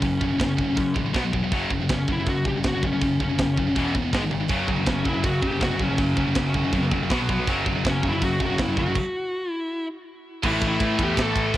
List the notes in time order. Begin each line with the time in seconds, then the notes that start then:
Already playing: C#4
0.01 F#1 F#2 C#3, kick, open hi-hat
0.21 F#1 F#2 C#3, kick
0.29 F#2 C#3
0.33 F#2 C#3
0.38 F#1 F#2 C#3, kick, snare, open hi-hat
0.43 F#2 C#3
0.57 F#1 F#2 C#3, kick
0.64 F#2 C#3
0.70 F#2 C#3
0.75 F#2 C#3, kick, open hi-hat
0.94 A1 F#2 C#3, kick
1.06 F#2 C#3
1.14 B1 B2 F#3 B3, kick, snare, open hi-hat
1.25 B2 F#3
1.32 E1 B2 F#3, kick
1.44 B2 F#3
1.52 F#1 F#2 C#3 F#3, kick, open hi-hat
1.70 F#1 F#2 C#3, kick
1.82 F#2 C#3
1.89 F#1 F#2 C#3 C#4, kick, snare, open hi-hat
2.07 F#1 F#2 C#3, kick
2.12 E4
2.20 F#2 C#3
2.26 F#2 C#3 F#4, kick, open hi-hat
2.45 F#1 F#2 C#3 G4, kick
2.57 F#2 C#3
2.63 F#1 F#2 C#3 F#4, kick, snare, open hi-hat
2.76 F#2 C#3
2.83 F#1 F#2 C#3 C#4, kick
2.93 F#2 C#3
3.01 F#1 F#2 C#3, kick, open hi-hat
3.20 F#1 F#2 C#3, kick
3.29 F#2 C#3
3.38 F#1 F#2 C#3, kick, snare, open hi-hat
3.58 F#1 F#2 C#3, kick
3.67 F#2 C#3
3.75 E1 E2 B2 E3, kick, open hi-hat
3.94 E1 E2 B2, kick
4.02 E2 B2
4.13 G#1 G#2 D#3 G#3, kick, snare, open hi-hat
4.22 G#2 D#3
4.31 G#1 G#2 D#3, high tom
4.40 G#2 D#3
4.48 F#1 F#2 C#3 F#3, kick, open hi-hat
4.68 F#1 F#2 C#3 F#3, kick
4.76 F#2 C#3
4.86 F#1 F#2 C#3 F#3, kick, snare, open hi-hat
4.90 C#4
5.05 F#1 F#2 C#3 F#3, kick
5.09 E4
5.13 F#2 C#3
5.23 F#2 C#3 F#3 F#4, kick, open hi-hat
5.42 F#1 F#2 C#3 F#3, kick
5.47 G4
5.52 F#2 C#3
5.61 F#1 F#2 C#3 F#3 F#4, kick, snare, open hi-hat
5.71 F#2 C#3
5.79 F#1 F#2 C#3 F#3 C#4, kick
5.90 F#2 C#3
5.98 F#1 F#2 C#3 F#3, kick, open hi-hat
6.16 F#1 F#2 C#3 F#3, kick
6.28 F#2 C#3
6.35 F#1 F#2 C#3 F#3, kick, snare, open hi-hat
6.54 F#1 F#2 C#3 F#3, kick
6.64 F#2 C#3
6.73 F#2 C#3 F#3, kick, open hi-hat
6.91 F#1 F#2 C#3 F#3, kick
7.03 F#2 C#3
7.10 B1 B2 F#3 B3, kick, snare, open hi-hat
7.21 B2 F#3
7.29 B1 B2 F#3 B3, kick
7.41 B2 F#3
7.47 F#1 F#2 C#3 F#3, kick, open hi-hat
7.66 F#1 F#2 C#3 F#3, kick
7.75 F#2 C#3
7.85 F#1 F#2 C#3 F#3, kick, snare, open hi-hat
7.90 C#4
8.03 F#1 F#2 C#3 F#3, kick
8.08 C#3 E4
8.13 F#2
8.21 F#2 C#3 F#3 F#4, kick, open hi-hat
8.40 F#1 F#2 C#3 F#3, kick
8.46 F#4
8.50 F#2 C#3
8.58 F#1 F#2 C#3 F#3 E4, kick, snare, open hi-hat
8.68 F#2 C#3
8.77 F#1 F#2 C#3 F#3 F#4, kick
8.86 F#2 C#3
8.95 kick, crash
9.52 E4
10.43 A1 A2 E3 A3, kick, crash
10.47 E4
10.61 A1, kick, ride
10.68 E4
10.80 A2 E3 A3, kick, ride
10.99 E2 A2 E3 A3, kick, ride
11.04 G4
11.17 A1 A2 E3, kick, snare, ride
11.21 A3 A4
11.35 A1, kick, ride
11.54 E1, kick